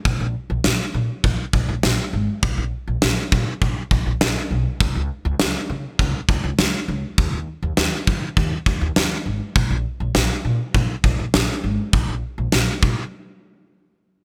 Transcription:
<<
  \new Staff \with { instrumentName = "Upright bass" } { \clef bass \time 4/4 \key bes \phrygian \tempo 4 = 101 bes,,16 bes,,16 r16 bes,,16 bes,,16 r16 bes,16 r16 bes,,16 r16 bes,,16 bes,,16 bes,,16 r16 aes,,16 r16 | bes,,16 bes,,16 r16 bes,,16 bes,,16 r16 bes,16 r16 bes,,16 r16 bes,,16 bes,,16 bes,,16 r16 ces,16 r16 | des,16 des,16 r16 des,16 des,16 r16 des16 r16 des,16 r16 des,16 des,16 des,16 r16 des,16 r16 | ees,16 ees,16 r16 ees,16 ees,16 r16 ees16 r16 ees,16 r16 ees,16 ees,16 ees,16 r16 aes,,16 r16 |
bes,,16 bes,,16 r16 bes,,16 bes,,16 r16 bes,16 r16 bes,,16 r16 bes,,16 bes,,16 bes,,16 r16 aes,,16 r16 | bes,,16 bes,,16 r16 bes,,16 bes,,16 r16 bes,16 r2 r16 | }
  \new DrumStaff \with { instrumentName = "Drums" } \drummode { \time 4/4 bd4 sn4 bd8 bd8 sn4 | bd4 sn8 bd8 bd8 bd8 sn4 | bd4 sn4 bd8 bd8 sn4 | bd4 sn8 bd8 bd8 bd8 sn4 |
bd4 sn4 bd8 bd8 sn4 | bd4 sn8 bd8 r4 r4 | }
>>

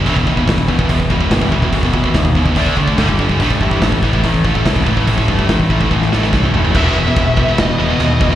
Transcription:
<<
  \new Staff \with { instrumentName = "Lead electric guitar" } { \time 4/4 \key e \minor \tempo 4 = 144 r1 | r1 | r1 | r1 |
e''2 dis''2 | }
  \new Staff \with { instrumentName = "Distorted electric guitar" } { \clef bass \time 4/4 \key e \minor <e, b, e>8 <e, b, e>8 <e, b, e>8 <e, b, e>8 <e, b, e>8 <e, b, e>8 <e, b, e>8 <e, b, e>8 | <e, b, e>8 <e, b, e>8 <e, b, e>8 <e, b, e>8 <d a d'>8 <d a d'>8 <g, d g>8 <g, d g>8 | <a, e a>8 <a, e a>8 <a, e a>8 <a, e a>8 <a, e a>8 <a, e a>8 <a, e a>8 <a, e a>8 | <a, e a>8 <a, e a>8 <a, e a>8 <a, e a>8 <a, e a>8 <a, e a>8 <a, e a>8 <a, e a>8 |
<e, b, e>2~ <e, b, e>8 <e, b, e>8 <e, b, e>4 | }
  \new Staff \with { instrumentName = "Distorted electric guitar" } { \clef bass \time 4/4 \key e \minor <e, b, e>16 <e, b,>16 <e, b,>16 <e, b,>16 <e, b,>8 <e, b,>16 <e, b,>16 <e, b,>8 <e, b,>16 <e, b,>16 <e, b,>16 <e, b,>16 <e, b,>16 <e, b,>16 | <e, b,>16 <e, b,>16 <e, b,>16 <e, b,>16 <e, b,>8 <e, b,>16 <e, b,>16 <d a d'>8 <d a>16 <d a>16 <g, d g>16 <g, d>16 <g, d>16 <g, d>16 | <a, e a>16 <a, e>16 <a, e>16 <a, e>16 <a, e>8 <a, e>16 <a, e>16 <a, e>8 <a, e>16 <a, e>16 <a, e>16 <a, e>16 <a, e>16 <a, e>16 | <a, e>16 <a, e>16 <a, e>16 <a, e>16 <a, e>8 <a, e>16 <a, e>16 <a, e>8 <a, e>16 <a, e>16 <a, e>16 <a, e>16 <a, e>16 <a, e>16 |
<e, b, e>8 <e, b,>16 <e, b,>16 <e, b,>8 <e, b,>16 <e, b,>16 <e, b,>8 <e, b,>16 <e, b,>16 <e, b,>8 <e, b,>16 <e, b,>16 | }
  \new Staff \with { instrumentName = "Distorted electric guitar" } { \clef bass \time 4/4 \key e \minor <e, b, e>16 <e, b,>16 <e, b,>16 <e, b,>16 <e, b,>8 <e, b,>16 <e, b,>16 <e, b,>8 <e, b,>16 <e, b,>16 <e, b,>16 <e, b,>16 <e, b,>16 <e, b,>16 | <e, b,>16 <e, b,>16 <e, b,>16 <e, b,>16 <e, b,>8 <e, b,>16 <e, b,>16 <d a d'>8 <d a>16 <d a>16 <g, d g>16 <g, d>16 <g, d>16 <g, d>16 | <a, e a>16 <a, e>16 <a, e>16 <a, e>16 <a, e>8 <a, e>16 <a, e>16 <a, e>8 <a, e>16 <a, e>16 <a, e>16 <a, e>16 <a, e>16 <a, e>16 | <a, e>16 <a, e>16 <a, e>16 <a, e>16 <a, e>8 <a, e>16 <a, e>16 <a, e>8 <a, e>16 <a, e>16 <a, e>16 <a, e>16 <a, e>16 <a, e>16 |
<e, b, e>8 <e, b,>16 <e, b,>16 <e, b,>8 <e, b,>16 <e, b,>16 <e, b,>8 <e, b,>16 <e, b,>16 <e, b,>8 <e, b,>16 b,16 | }
  \new Staff \with { instrumentName = "Picked electric bass" } { \clef bass \time 4/4 \key e \minor e,,8 dis,8 e,,4 e,,8 e,,8 g,,8 e,,8 | e,,8 dis,8 dis,4 d,8 d,8 g,,8 g,,8 | a,,8 g,8 a,,4 a,,8 a,,8 c,8 a,,8 | a,,8 g,8 a,,4 a,,8 a,,8 c,8 fis,,8 |
e,,8 e,,8 e,,4 e,,8 e,,8 dis,8 e,,8 | }
  \new DrumStaff \with { instrumentName = "Drums" } \drummode { \time 4/4 <hho bd>16 bd16 bd16 bd16 <hho bd sn>16 bd16 bd16 bd16 <hho bd>16 bd16 bd16 bd16 <hho bd sn>16 bd16 bd16 bd16 | <hho bd>16 bd16 bd16 bd16 <hho bd sn>16 bd16 bd16 bd16 <hho bd>16 bd16 bd16 bd16 <hho bd sn>16 bd16 bd16 bd16 | <hho bd>16 bd16 bd16 bd16 <hho bd sn>16 bd16 bd16 bd16 <hho bd>16 bd16 bd16 bd16 <hho bd sn>16 bd16 bd16 bd16 | <hho bd>16 bd16 bd16 bd16 <hho bd sn>16 bd16 bd16 bd16 bd16 sn16 sn16 sn16 <bd sn>16 toml16 tomfh16 tomfh16 |
<cymc bd>4 <cymc bd>8 bd8 <cymc sn>4 cymc8 bd8 | }
>>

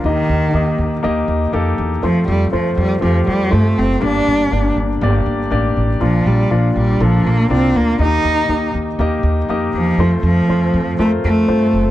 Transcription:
<<
  \new Staff \with { instrumentName = "Grand piano" } { \time 4/4 \key ees \lydian \tempo 4 = 121 <bes ees' g' ees''>8. r16 <bes ees' g' ees''>8. r16 <bes ees' g' ees''>8. r16 <bes ees' g' a'>8. r16 | <a c' f' c''>8. r16 <a c' f' c''>8. r16 <a c' f' g'>8. r16 <a c' f' c''>8. r16 | <bes d' g' d''>8. r16 <bes d' g' d''>8. r16 <bes d' g' d''>8. r16 <bes d' g' d''>8. r16 | <bes d' f' d''>8. r16 <bes d' f' d''>8. r16 <bes d' f' a'>8. r16 <bes d' f' d''>8. r16 |
<bes ees' g' ees''>8. r16 <bes ees' g' ees''>8. r16 <bes ees' g' ees''>8. r16 <bes ees' g' ees''>8. r16 | <a c' f' c''>8. r16 <a c' f' c''>8. r16 <a c' f' bes' c''>8. r16 <a c' f' c''>8. r16 | }
  \new Staff \with { instrumentName = "Grand piano" } { \clef bass \time 4/4 \key ees \lydian ees4. r2 r8 | r1 | g,4. r2 r8 | bes,4. r2 r8 |
ees4. r2 r8 | r1 | }
  \new Staff \with { instrumentName = "Cello" } { \clef bass \time 4/4 \key ees \lydian ees2 r2 | f8 g8 f8 g8 f8 g8 a8 c'8 | d'4. r2 r8 | f8 g8 f8 g8 f8 bes8 c'8 bes8 |
ees'4. r2 f8~ | f8 f4. a8 a4. | }
  \new Staff \with { instrumentName = "Upright bass" } { \clef bass \time 4/4 \key ees \lydian ees,8 ees,8 ees,8 ees,8 ees,8 ees,8 f,8 e,8 | f,8 f,8 f,8 f,8 f,8 f,8 g,8 ges,,8 | g,,8 g,,8 g,,8 g,,8 g,,8 g,,8 a,,8 a,,8 | bes,,8 bes,,8 bes,,8 bes,,8 bes,,8 bes,,8 c,8 d,8 |
ees,8 ees,8 ees,8 ees,8 ees,8 ees,8 f,8 e,8 | f,8 f,8 f,8 f,8 f,8 f,8 g,8 ges,,8 | }
>>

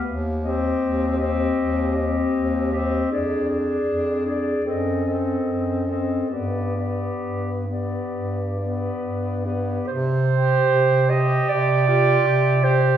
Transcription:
<<
  \new Staff \with { instrumentName = "Clarinet" } { \time 4/4 \key c \minor \tempo 4 = 77 r8 ees''4 ees''4 ees''4 ees''8 | d''8 d''4 d''8 dis''8 dis''4 dis''8 | d''8 d''4 d''4 d''4 d''8 | r2 g'8 f'8 g'4 | }
  \new Staff \with { instrumentName = "Clarinet" } { \time 4/4 \key c \minor r8 g'4 g'4 g'4 g'8 | aes'8 aes'4 aes'8 a'8 a'4 a'8 | g'8 g'4 g'4 g'4 g'8 | c''4. ees''8 d''4. c''8 | }
  \new Staff \with { instrumentName = "Tenor saxophone" } { \time 4/4 \key c \minor r8 c'4 c'4 c'4 c'8 | d'8 d'4 d'8 c'8 c'4 c'8 | b8 b4 b4 b4 b8 | r8 g'4 g'4 g'4 g'8 | }
  \new Staff \with { instrumentName = "Bass clarinet" } { \clef bass \time 4/4 \key c \minor ees,4 ees,4 ees,4 ees,4 | f,4 f,4 fis,4 fis,4 | g,4 g,4 g,4 g,4 | c4 c4 c4 c4 | }
>>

